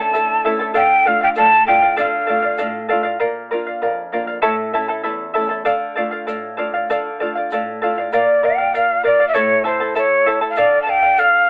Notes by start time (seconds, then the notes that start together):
Already playing: D3 A3 C#4 E4
0.00 E4 A4 A5
0.13 D3 E4 A4 E5 A5, shaker
0.44 A3 C#4 E4 A4 E5 A5
0.59 E4 A4 A5
0.74 D3 A4 D5 F5 G5, shaker
1.05 A3 D4 F4 A4 D5 F5
1.21 D5 F5 G5
1.35 A2 A4 D5 F5 A5, shaker
1.67 A3 D4 F4 A4 D5 F5 G5
1.82 D5 F5
1.96 D3 A4 D5 F5, shaker
2.27 A3 D4 F4 A4 D5 F5
2.42 D5 F5
2.58 A2 A4 D5 F5, shaker
2.89 A3 D4 F4 A4 D5 F5
3.03 D5 F5
3.20 A#2 A#4 D5 F5
3.51 A#3 D4 F4 A#4 D5 F5
3.67 D5 F5
3.82 F2 A#4 D5 F5
4.12 A#3 D4 F4 A#4 D5 F5
4.27 D5 F5
4.42 A2 E4 A4 C#5 E5 A5
4.73 A3 C#4 E4 A4 E5 A5
4.88 E4 A4 A5
5.03 E2 E4 A4 E5 A5
5.34 A3 C#4 E4 A4 E5 A5
5.38 E4
5.49 E4 A4 A5
5.65 D3 A4 D5 F5, shaker
5.96 A3 D4 F4 A4 D5 F5
6.11 D5 F5
6.27 A2 A4 D5 F5, shaker
6.57 A3 D4 F4 A4 D5 F5
6.74 D5 F5
6.90 D3 A4 D5 F5, shaker
7.20 A3 D4 F4 A4 D5 F5
7.35 D5 F5
7.51 A2 A4 D5 F5, shaker
7.82 A3 D4 F4 A4 D5 F5
7.98 D5 F5
8.13 A#2 A#4 D5 F5, shaker
8.43 A#4 D5 F5 G5
8.58 D5 F5
8.74 A#4 D5 F5, shaker
9.03 A#4 D5 F5
9.20 D5 F5
9.28 E5
9.34 A2 E4 A4 C#5 E5 A5, shaker
9.64 E4 A4 C5 E5 A5
9.80 E4 A4 A5
9.95 E4 A4 C#5 E5 A5, shaker
10.26 E4 A4 E5 A5
10.41 E4 A4 A5
10.50 F5
10.56 D3 A4 D5 F5, shaker
10.82 A5
10.87 A4 D5 F5 G5
11.02 D5 F5
11.17 A4 D5 F5, shaker